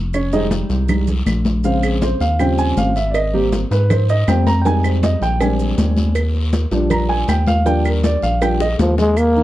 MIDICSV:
0, 0, Header, 1, 5, 480
1, 0, Start_track
1, 0, Key_signature, -3, "major"
1, 0, Tempo, 376412
1, 172, Time_signature, 4, 2, 24, 8
1, 12029, End_track
2, 0, Start_track
2, 0, Title_t, "Grand piano"
2, 0, Program_c, 0, 0
2, 182, Note_on_c, 0, 73, 75
2, 185, Note_on_c, 0, 61, 67
2, 410, Note_off_c, 0, 73, 0
2, 412, Note_off_c, 0, 61, 0
2, 412, Note_on_c, 0, 55, 55
2, 416, Note_on_c, 0, 56, 47
2, 421, Note_on_c, 0, 75, 87
2, 424, Note_on_c, 0, 63, 75
2, 424, Note_on_c, 0, 68, 73
2, 425, Note_on_c, 0, 72, 67
2, 563, Note_off_c, 0, 75, 0
2, 565, Note_off_c, 0, 68, 0
2, 565, Note_off_c, 0, 72, 0
2, 1097, Note_off_c, 0, 55, 0
2, 1099, Note_off_c, 0, 56, 0
2, 1104, Note_off_c, 0, 63, 0
2, 1134, Note_on_c, 0, 55, 47
2, 1140, Note_on_c, 0, 56, 43
2, 1146, Note_on_c, 0, 63, 51
2, 1349, Note_off_c, 0, 55, 0
2, 1353, Note_off_c, 0, 56, 0
2, 1356, Note_off_c, 0, 63, 0
2, 2093, Note_on_c, 0, 49, 58
2, 2100, Note_on_c, 0, 56, 51
2, 2102, Note_on_c, 0, 77, 84
2, 2107, Note_on_c, 0, 60, 61
2, 2331, Note_off_c, 0, 77, 0
2, 2338, Note_on_c, 0, 68, 58
2, 2568, Note_off_c, 0, 68, 0
2, 2579, Note_on_c, 0, 72, 83
2, 2777, Note_off_c, 0, 49, 0
2, 2781, Note_off_c, 0, 56, 0
2, 2785, Note_off_c, 0, 60, 0
2, 2809, Note_off_c, 0, 72, 0
2, 2816, Note_on_c, 0, 77, 89
2, 3047, Note_off_c, 0, 77, 0
2, 3049, Note_on_c, 0, 49, 58
2, 3056, Note_on_c, 0, 53, 45
2, 3061, Note_on_c, 0, 55, 51
2, 3062, Note_on_c, 0, 79, 73
2, 3066, Note_on_c, 0, 60, 64
2, 3290, Note_off_c, 0, 79, 0
2, 3296, Note_on_c, 0, 80, 103
2, 3527, Note_off_c, 0, 80, 0
2, 3544, Note_on_c, 0, 77, 91
2, 3735, Note_off_c, 0, 49, 0
2, 3738, Note_off_c, 0, 53, 0
2, 3741, Note_off_c, 0, 55, 0
2, 3744, Note_off_c, 0, 60, 0
2, 3771, Note_off_c, 0, 77, 0
2, 3778, Note_on_c, 0, 76, 86
2, 3962, Note_on_c, 0, 74, 61
2, 3995, Note_off_c, 0, 74, 0
2, 4008, Note_off_c, 0, 76, 0
2, 4023, Note_on_c, 0, 75, 90
2, 4250, Note_on_c, 0, 55, 53
2, 4251, Note_off_c, 0, 75, 0
2, 4258, Note_on_c, 0, 58, 51
2, 4262, Note_on_c, 0, 67, 88
2, 4266, Note_on_c, 0, 60, 52
2, 4404, Note_off_c, 0, 67, 0
2, 4571, Note_off_c, 0, 55, 0
2, 4575, Note_off_c, 0, 58, 0
2, 4578, Note_off_c, 0, 60, 0
2, 4741, Note_on_c, 0, 71, 89
2, 4970, Note_off_c, 0, 71, 0
2, 5226, Note_on_c, 0, 75, 103
2, 5452, Note_off_c, 0, 75, 0
2, 5455, Note_on_c, 0, 55, 48
2, 5460, Note_on_c, 0, 58, 41
2, 5462, Note_on_c, 0, 79, 83
2, 5465, Note_on_c, 0, 60, 61
2, 5670, Note_off_c, 0, 55, 0
2, 5673, Note_off_c, 0, 58, 0
2, 5675, Note_off_c, 0, 60, 0
2, 5690, Note_off_c, 0, 79, 0
2, 5697, Note_on_c, 0, 82, 103
2, 5886, Note_on_c, 0, 79, 67
2, 5919, Note_off_c, 0, 79, 0
2, 5928, Note_off_c, 0, 82, 0
2, 5929, Note_on_c, 0, 55, 58
2, 5938, Note_on_c, 0, 56, 57
2, 5944, Note_on_c, 0, 80, 98
2, 5945, Note_on_c, 0, 63, 62
2, 6171, Note_off_c, 0, 80, 0
2, 6176, Note_on_c, 0, 72, 64
2, 6407, Note_off_c, 0, 72, 0
2, 6419, Note_on_c, 0, 75, 82
2, 6648, Note_off_c, 0, 75, 0
2, 6661, Note_on_c, 0, 79, 88
2, 6842, Note_off_c, 0, 55, 0
2, 6847, Note_off_c, 0, 56, 0
2, 6851, Note_off_c, 0, 63, 0
2, 6887, Note_on_c, 0, 55, 61
2, 6890, Note_off_c, 0, 79, 0
2, 6891, Note_on_c, 0, 56, 45
2, 6897, Note_on_c, 0, 60, 48
2, 6899, Note_on_c, 0, 62, 59
2, 6899, Note_on_c, 0, 80, 75
2, 7801, Note_off_c, 0, 55, 0
2, 7803, Note_off_c, 0, 56, 0
2, 7804, Note_off_c, 0, 80, 0
2, 7806, Note_off_c, 0, 60, 0
2, 7808, Note_off_c, 0, 62, 0
2, 8560, Note_on_c, 0, 53, 61
2, 8567, Note_on_c, 0, 55, 51
2, 8576, Note_on_c, 0, 62, 65
2, 8816, Note_on_c, 0, 82, 85
2, 9045, Note_on_c, 0, 80, 99
2, 9047, Note_off_c, 0, 82, 0
2, 9249, Note_off_c, 0, 53, 0
2, 9253, Note_off_c, 0, 55, 0
2, 9258, Note_off_c, 0, 62, 0
2, 9281, Note_off_c, 0, 80, 0
2, 9295, Note_on_c, 0, 79, 84
2, 9526, Note_off_c, 0, 79, 0
2, 9531, Note_on_c, 0, 77, 102
2, 9757, Note_on_c, 0, 53, 57
2, 9764, Note_off_c, 0, 77, 0
2, 9765, Note_on_c, 0, 55, 53
2, 9770, Note_on_c, 0, 62, 65
2, 9772, Note_on_c, 0, 79, 93
2, 9981, Note_off_c, 0, 53, 0
2, 10005, Note_off_c, 0, 79, 0
2, 10011, Note_on_c, 0, 70, 64
2, 10244, Note_off_c, 0, 70, 0
2, 10256, Note_on_c, 0, 74, 90
2, 10487, Note_off_c, 0, 74, 0
2, 10496, Note_on_c, 0, 77, 94
2, 10714, Note_off_c, 0, 55, 0
2, 10720, Note_off_c, 0, 62, 0
2, 10727, Note_off_c, 0, 77, 0
2, 10729, Note_on_c, 0, 53, 48
2, 10733, Note_on_c, 0, 55, 48
2, 10739, Note_on_c, 0, 62, 54
2, 10740, Note_on_c, 0, 79, 89
2, 10947, Note_off_c, 0, 53, 0
2, 10949, Note_off_c, 0, 55, 0
2, 10952, Note_off_c, 0, 62, 0
2, 10969, Note_off_c, 0, 79, 0
2, 10984, Note_on_c, 0, 75, 106
2, 11124, Note_off_c, 0, 75, 0
2, 11940, Note_on_c, 0, 51, 66
2, 11946, Note_on_c, 0, 63, 69
2, 12029, Note_off_c, 0, 51, 0
2, 12029, Note_off_c, 0, 63, 0
2, 12029, End_track
3, 0, Start_track
3, 0, Title_t, "Trombone"
3, 0, Program_c, 1, 57
3, 11222, Note_on_c, 1, 53, 87
3, 11441, Note_off_c, 1, 53, 0
3, 11460, Note_on_c, 1, 56, 114
3, 11704, Note_on_c, 1, 58, 116
3, 11723, Note_off_c, 1, 56, 0
3, 12029, Note_off_c, 1, 58, 0
3, 12029, End_track
4, 0, Start_track
4, 0, Title_t, "Analog synth bass"
4, 0, Program_c, 2, 38
4, 0, Note_on_c, 2, 29, 99
4, 816, Note_off_c, 2, 29, 0
4, 888, Note_on_c, 2, 36, 97
4, 1560, Note_off_c, 2, 36, 0
4, 1607, Note_on_c, 2, 34, 94
4, 2735, Note_off_c, 2, 34, 0
4, 2811, Note_on_c, 2, 39, 85
4, 3482, Note_off_c, 2, 39, 0
4, 3528, Note_on_c, 2, 32, 99
4, 4655, Note_off_c, 2, 32, 0
4, 4730, Note_on_c, 2, 44, 89
4, 5400, Note_off_c, 2, 44, 0
4, 5455, Note_on_c, 2, 41, 105
4, 6578, Note_off_c, 2, 41, 0
4, 6648, Note_on_c, 2, 34, 90
4, 7319, Note_off_c, 2, 34, 0
4, 7370, Note_on_c, 2, 39, 95
4, 8496, Note_off_c, 2, 39, 0
4, 8564, Note_on_c, 2, 34, 92
4, 9237, Note_off_c, 2, 34, 0
4, 9289, Note_on_c, 2, 39, 105
4, 10415, Note_off_c, 2, 39, 0
4, 10493, Note_on_c, 2, 34, 88
4, 11163, Note_off_c, 2, 34, 0
4, 11210, Note_on_c, 2, 39, 108
4, 12029, Note_off_c, 2, 39, 0
4, 12029, End_track
5, 0, Start_track
5, 0, Title_t, "Drums"
5, 167, Note_on_c, 9, 74, 68
5, 173, Note_on_c, 9, 70, 74
5, 176, Note_on_c, 9, 63, 35
5, 179, Note_on_c, 9, 75, 66
5, 294, Note_off_c, 9, 74, 0
5, 301, Note_off_c, 9, 70, 0
5, 303, Note_off_c, 9, 63, 0
5, 307, Note_off_c, 9, 75, 0
5, 412, Note_on_c, 9, 63, 34
5, 415, Note_on_c, 9, 70, 64
5, 540, Note_off_c, 9, 63, 0
5, 543, Note_off_c, 9, 70, 0
5, 650, Note_on_c, 9, 63, 92
5, 652, Note_on_c, 9, 73, 70
5, 655, Note_on_c, 9, 70, 73
5, 778, Note_off_c, 9, 63, 0
5, 779, Note_off_c, 9, 73, 0
5, 782, Note_off_c, 9, 70, 0
5, 888, Note_on_c, 9, 70, 30
5, 891, Note_on_c, 9, 73, 75
5, 895, Note_on_c, 9, 63, 39
5, 1016, Note_off_c, 9, 70, 0
5, 1019, Note_off_c, 9, 73, 0
5, 1022, Note_off_c, 9, 63, 0
5, 1128, Note_on_c, 9, 74, 80
5, 1130, Note_on_c, 9, 70, 74
5, 1133, Note_on_c, 9, 63, 38
5, 1133, Note_on_c, 9, 64, 86
5, 1139, Note_on_c, 9, 75, 77
5, 1255, Note_off_c, 9, 74, 0
5, 1257, Note_off_c, 9, 70, 0
5, 1261, Note_off_c, 9, 63, 0
5, 1261, Note_off_c, 9, 64, 0
5, 1266, Note_off_c, 9, 75, 0
5, 1370, Note_on_c, 9, 70, 69
5, 1377, Note_on_c, 9, 63, 33
5, 1377, Note_on_c, 9, 64, 71
5, 1497, Note_off_c, 9, 70, 0
5, 1505, Note_off_c, 9, 63, 0
5, 1505, Note_off_c, 9, 64, 0
5, 1611, Note_on_c, 9, 73, 83
5, 1612, Note_on_c, 9, 70, 64
5, 1613, Note_on_c, 9, 63, 89
5, 1616, Note_on_c, 9, 75, 64
5, 1738, Note_off_c, 9, 73, 0
5, 1740, Note_off_c, 9, 63, 0
5, 1740, Note_off_c, 9, 70, 0
5, 1744, Note_off_c, 9, 75, 0
5, 1847, Note_on_c, 9, 73, 83
5, 1852, Note_on_c, 9, 63, 93
5, 1853, Note_on_c, 9, 70, 31
5, 1974, Note_off_c, 9, 73, 0
5, 1979, Note_off_c, 9, 63, 0
5, 1980, Note_off_c, 9, 70, 0
5, 2088, Note_on_c, 9, 70, 74
5, 2090, Note_on_c, 9, 74, 71
5, 2095, Note_on_c, 9, 63, 38
5, 2216, Note_off_c, 9, 70, 0
5, 2218, Note_off_c, 9, 74, 0
5, 2222, Note_off_c, 9, 63, 0
5, 2334, Note_on_c, 9, 70, 64
5, 2335, Note_on_c, 9, 63, 36
5, 2338, Note_on_c, 9, 75, 78
5, 2461, Note_off_c, 9, 70, 0
5, 2462, Note_off_c, 9, 63, 0
5, 2465, Note_off_c, 9, 75, 0
5, 2570, Note_on_c, 9, 73, 76
5, 2572, Note_on_c, 9, 70, 69
5, 2574, Note_on_c, 9, 63, 98
5, 2698, Note_off_c, 9, 73, 0
5, 2700, Note_off_c, 9, 70, 0
5, 2701, Note_off_c, 9, 63, 0
5, 2810, Note_on_c, 9, 73, 74
5, 2814, Note_on_c, 9, 63, 37
5, 2815, Note_on_c, 9, 70, 33
5, 2937, Note_off_c, 9, 73, 0
5, 2942, Note_off_c, 9, 63, 0
5, 2943, Note_off_c, 9, 70, 0
5, 3050, Note_on_c, 9, 74, 81
5, 3052, Note_on_c, 9, 63, 37
5, 3053, Note_on_c, 9, 75, 71
5, 3054, Note_on_c, 9, 70, 75
5, 3178, Note_off_c, 9, 74, 0
5, 3180, Note_off_c, 9, 63, 0
5, 3180, Note_off_c, 9, 75, 0
5, 3181, Note_off_c, 9, 70, 0
5, 3295, Note_on_c, 9, 70, 62
5, 3297, Note_on_c, 9, 63, 36
5, 3423, Note_off_c, 9, 70, 0
5, 3425, Note_off_c, 9, 63, 0
5, 3530, Note_on_c, 9, 73, 78
5, 3534, Note_on_c, 9, 70, 76
5, 3538, Note_on_c, 9, 63, 83
5, 3658, Note_off_c, 9, 73, 0
5, 3662, Note_off_c, 9, 70, 0
5, 3665, Note_off_c, 9, 63, 0
5, 3774, Note_on_c, 9, 70, 34
5, 3775, Note_on_c, 9, 73, 77
5, 3901, Note_off_c, 9, 70, 0
5, 3902, Note_off_c, 9, 73, 0
5, 4011, Note_on_c, 9, 56, 105
5, 4013, Note_on_c, 9, 70, 72
5, 4013, Note_on_c, 9, 74, 68
5, 4016, Note_on_c, 9, 63, 38
5, 4016, Note_on_c, 9, 75, 73
5, 4138, Note_off_c, 9, 56, 0
5, 4140, Note_off_c, 9, 74, 0
5, 4141, Note_off_c, 9, 70, 0
5, 4143, Note_off_c, 9, 75, 0
5, 4144, Note_off_c, 9, 63, 0
5, 4255, Note_on_c, 9, 63, 31
5, 4382, Note_off_c, 9, 63, 0
5, 4494, Note_on_c, 9, 70, 74
5, 4494, Note_on_c, 9, 73, 70
5, 4495, Note_on_c, 9, 56, 69
5, 4496, Note_on_c, 9, 63, 90
5, 4621, Note_off_c, 9, 73, 0
5, 4622, Note_off_c, 9, 70, 0
5, 4623, Note_off_c, 9, 56, 0
5, 4623, Note_off_c, 9, 63, 0
5, 4734, Note_on_c, 9, 70, 29
5, 4737, Note_on_c, 9, 73, 76
5, 4738, Note_on_c, 9, 56, 73
5, 4738, Note_on_c, 9, 63, 37
5, 4862, Note_off_c, 9, 70, 0
5, 4864, Note_off_c, 9, 73, 0
5, 4865, Note_off_c, 9, 56, 0
5, 4865, Note_off_c, 9, 63, 0
5, 4971, Note_on_c, 9, 74, 72
5, 4974, Note_on_c, 9, 75, 66
5, 4975, Note_on_c, 9, 56, 107
5, 4978, Note_on_c, 9, 70, 72
5, 4979, Note_on_c, 9, 63, 36
5, 4979, Note_on_c, 9, 64, 91
5, 5099, Note_off_c, 9, 74, 0
5, 5102, Note_off_c, 9, 56, 0
5, 5102, Note_off_c, 9, 75, 0
5, 5105, Note_off_c, 9, 70, 0
5, 5106, Note_off_c, 9, 63, 0
5, 5106, Note_off_c, 9, 64, 0
5, 5216, Note_on_c, 9, 70, 65
5, 5217, Note_on_c, 9, 63, 33
5, 5219, Note_on_c, 9, 56, 75
5, 5344, Note_off_c, 9, 63, 0
5, 5344, Note_off_c, 9, 70, 0
5, 5346, Note_off_c, 9, 56, 0
5, 5455, Note_on_c, 9, 73, 82
5, 5457, Note_on_c, 9, 63, 82
5, 5457, Note_on_c, 9, 70, 82
5, 5457, Note_on_c, 9, 75, 68
5, 5458, Note_on_c, 9, 56, 66
5, 5583, Note_off_c, 9, 73, 0
5, 5584, Note_off_c, 9, 75, 0
5, 5585, Note_off_c, 9, 63, 0
5, 5585, Note_off_c, 9, 70, 0
5, 5586, Note_off_c, 9, 56, 0
5, 5695, Note_on_c, 9, 63, 100
5, 5696, Note_on_c, 9, 73, 86
5, 5698, Note_on_c, 9, 56, 82
5, 5698, Note_on_c, 9, 70, 31
5, 5822, Note_off_c, 9, 63, 0
5, 5823, Note_off_c, 9, 73, 0
5, 5825, Note_off_c, 9, 56, 0
5, 5825, Note_off_c, 9, 70, 0
5, 5934, Note_on_c, 9, 74, 69
5, 5935, Note_on_c, 9, 56, 100
5, 5938, Note_on_c, 9, 70, 74
5, 6062, Note_off_c, 9, 74, 0
5, 6063, Note_off_c, 9, 56, 0
5, 6065, Note_off_c, 9, 70, 0
5, 6176, Note_on_c, 9, 63, 33
5, 6176, Note_on_c, 9, 70, 68
5, 6176, Note_on_c, 9, 75, 78
5, 6303, Note_off_c, 9, 75, 0
5, 6304, Note_off_c, 9, 63, 0
5, 6304, Note_off_c, 9, 70, 0
5, 6411, Note_on_c, 9, 73, 71
5, 6414, Note_on_c, 9, 56, 71
5, 6415, Note_on_c, 9, 63, 104
5, 6418, Note_on_c, 9, 70, 69
5, 6539, Note_off_c, 9, 73, 0
5, 6542, Note_off_c, 9, 56, 0
5, 6543, Note_off_c, 9, 63, 0
5, 6545, Note_off_c, 9, 70, 0
5, 6652, Note_on_c, 9, 73, 68
5, 6657, Note_on_c, 9, 63, 37
5, 6658, Note_on_c, 9, 70, 32
5, 6779, Note_off_c, 9, 73, 0
5, 6784, Note_off_c, 9, 63, 0
5, 6785, Note_off_c, 9, 70, 0
5, 6890, Note_on_c, 9, 74, 82
5, 6892, Note_on_c, 9, 56, 116
5, 6892, Note_on_c, 9, 75, 68
5, 6896, Note_on_c, 9, 63, 40
5, 6896, Note_on_c, 9, 70, 71
5, 7018, Note_off_c, 9, 74, 0
5, 7019, Note_off_c, 9, 56, 0
5, 7019, Note_off_c, 9, 75, 0
5, 7023, Note_off_c, 9, 63, 0
5, 7023, Note_off_c, 9, 70, 0
5, 7131, Note_on_c, 9, 70, 67
5, 7135, Note_on_c, 9, 63, 33
5, 7259, Note_off_c, 9, 70, 0
5, 7263, Note_off_c, 9, 63, 0
5, 7366, Note_on_c, 9, 56, 66
5, 7368, Note_on_c, 9, 73, 82
5, 7372, Note_on_c, 9, 70, 72
5, 7373, Note_on_c, 9, 63, 86
5, 7494, Note_off_c, 9, 56, 0
5, 7496, Note_off_c, 9, 73, 0
5, 7500, Note_off_c, 9, 70, 0
5, 7501, Note_off_c, 9, 63, 0
5, 7608, Note_on_c, 9, 70, 29
5, 7608, Note_on_c, 9, 73, 79
5, 7612, Note_on_c, 9, 63, 84
5, 7735, Note_off_c, 9, 70, 0
5, 7735, Note_off_c, 9, 73, 0
5, 7740, Note_off_c, 9, 63, 0
5, 7845, Note_on_c, 9, 56, 103
5, 7845, Note_on_c, 9, 74, 75
5, 7847, Note_on_c, 9, 70, 71
5, 7851, Note_on_c, 9, 63, 34
5, 7852, Note_on_c, 9, 75, 74
5, 7973, Note_off_c, 9, 56, 0
5, 7973, Note_off_c, 9, 74, 0
5, 7974, Note_off_c, 9, 70, 0
5, 7978, Note_off_c, 9, 63, 0
5, 7979, Note_off_c, 9, 75, 0
5, 8091, Note_on_c, 9, 63, 35
5, 8219, Note_off_c, 9, 63, 0
5, 8325, Note_on_c, 9, 73, 76
5, 8326, Note_on_c, 9, 56, 72
5, 8327, Note_on_c, 9, 70, 73
5, 8329, Note_on_c, 9, 63, 96
5, 8453, Note_off_c, 9, 73, 0
5, 8454, Note_off_c, 9, 56, 0
5, 8454, Note_off_c, 9, 70, 0
5, 8456, Note_off_c, 9, 63, 0
5, 8564, Note_on_c, 9, 73, 77
5, 8565, Note_on_c, 9, 70, 29
5, 8568, Note_on_c, 9, 56, 68
5, 8571, Note_on_c, 9, 63, 41
5, 8691, Note_off_c, 9, 73, 0
5, 8692, Note_off_c, 9, 70, 0
5, 8695, Note_off_c, 9, 56, 0
5, 8698, Note_off_c, 9, 63, 0
5, 8801, Note_on_c, 9, 74, 79
5, 8803, Note_on_c, 9, 56, 117
5, 8806, Note_on_c, 9, 70, 68
5, 8809, Note_on_c, 9, 63, 38
5, 8809, Note_on_c, 9, 64, 86
5, 8812, Note_on_c, 9, 75, 67
5, 8929, Note_off_c, 9, 74, 0
5, 8931, Note_off_c, 9, 56, 0
5, 8934, Note_off_c, 9, 70, 0
5, 8936, Note_off_c, 9, 63, 0
5, 8936, Note_off_c, 9, 64, 0
5, 8939, Note_off_c, 9, 75, 0
5, 9046, Note_on_c, 9, 56, 73
5, 9051, Note_on_c, 9, 63, 32
5, 9174, Note_off_c, 9, 56, 0
5, 9179, Note_off_c, 9, 63, 0
5, 9282, Note_on_c, 9, 73, 79
5, 9285, Note_on_c, 9, 56, 67
5, 9290, Note_on_c, 9, 63, 80
5, 9290, Note_on_c, 9, 70, 81
5, 9298, Note_on_c, 9, 75, 70
5, 9410, Note_off_c, 9, 73, 0
5, 9413, Note_off_c, 9, 56, 0
5, 9417, Note_off_c, 9, 63, 0
5, 9418, Note_off_c, 9, 70, 0
5, 9426, Note_off_c, 9, 75, 0
5, 9520, Note_on_c, 9, 73, 88
5, 9530, Note_on_c, 9, 56, 81
5, 9531, Note_on_c, 9, 63, 105
5, 9533, Note_on_c, 9, 70, 33
5, 9648, Note_off_c, 9, 73, 0
5, 9657, Note_off_c, 9, 56, 0
5, 9659, Note_off_c, 9, 63, 0
5, 9661, Note_off_c, 9, 70, 0
5, 9767, Note_on_c, 9, 74, 67
5, 9768, Note_on_c, 9, 56, 103
5, 9773, Note_on_c, 9, 70, 73
5, 9894, Note_off_c, 9, 74, 0
5, 9895, Note_off_c, 9, 56, 0
5, 9900, Note_off_c, 9, 70, 0
5, 10012, Note_on_c, 9, 70, 59
5, 10014, Note_on_c, 9, 63, 35
5, 10018, Note_on_c, 9, 75, 73
5, 10140, Note_off_c, 9, 70, 0
5, 10142, Note_off_c, 9, 63, 0
5, 10146, Note_off_c, 9, 75, 0
5, 10245, Note_on_c, 9, 73, 76
5, 10250, Note_on_c, 9, 63, 104
5, 10254, Note_on_c, 9, 56, 77
5, 10255, Note_on_c, 9, 70, 69
5, 10373, Note_off_c, 9, 73, 0
5, 10378, Note_off_c, 9, 63, 0
5, 10381, Note_off_c, 9, 56, 0
5, 10383, Note_off_c, 9, 70, 0
5, 10489, Note_on_c, 9, 73, 82
5, 10493, Note_on_c, 9, 63, 37
5, 10499, Note_on_c, 9, 70, 33
5, 10616, Note_off_c, 9, 73, 0
5, 10620, Note_off_c, 9, 63, 0
5, 10626, Note_off_c, 9, 70, 0
5, 10731, Note_on_c, 9, 74, 81
5, 10733, Note_on_c, 9, 56, 119
5, 10735, Note_on_c, 9, 70, 83
5, 10736, Note_on_c, 9, 63, 40
5, 10736, Note_on_c, 9, 75, 72
5, 10859, Note_off_c, 9, 74, 0
5, 10860, Note_off_c, 9, 56, 0
5, 10862, Note_off_c, 9, 70, 0
5, 10863, Note_off_c, 9, 63, 0
5, 10863, Note_off_c, 9, 75, 0
5, 10971, Note_on_c, 9, 60, 80
5, 10975, Note_on_c, 9, 63, 37
5, 10977, Note_on_c, 9, 70, 64
5, 11099, Note_off_c, 9, 60, 0
5, 11102, Note_off_c, 9, 63, 0
5, 11104, Note_off_c, 9, 70, 0
5, 11213, Note_on_c, 9, 56, 72
5, 11213, Note_on_c, 9, 60, 84
5, 11213, Note_on_c, 9, 63, 94
5, 11214, Note_on_c, 9, 73, 77
5, 11215, Note_on_c, 9, 70, 77
5, 11341, Note_off_c, 9, 56, 0
5, 11341, Note_off_c, 9, 60, 0
5, 11341, Note_off_c, 9, 63, 0
5, 11342, Note_off_c, 9, 73, 0
5, 11343, Note_off_c, 9, 70, 0
5, 11453, Note_on_c, 9, 61, 83
5, 11456, Note_on_c, 9, 73, 81
5, 11460, Note_on_c, 9, 70, 32
5, 11580, Note_off_c, 9, 61, 0
5, 11584, Note_off_c, 9, 73, 0
5, 11587, Note_off_c, 9, 70, 0
5, 11692, Note_on_c, 9, 60, 54
5, 11697, Note_on_c, 9, 74, 61
5, 11697, Note_on_c, 9, 75, 66
5, 11698, Note_on_c, 9, 63, 31
5, 11700, Note_on_c, 9, 70, 85
5, 11819, Note_off_c, 9, 60, 0
5, 11824, Note_off_c, 9, 74, 0
5, 11825, Note_off_c, 9, 63, 0
5, 11825, Note_off_c, 9, 75, 0
5, 11827, Note_off_c, 9, 70, 0
5, 11940, Note_on_c, 9, 70, 27
5, 11941, Note_on_c, 9, 63, 31
5, 12029, Note_off_c, 9, 63, 0
5, 12029, Note_off_c, 9, 70, 0
5, 12029, End_track
0, 0, End_of_file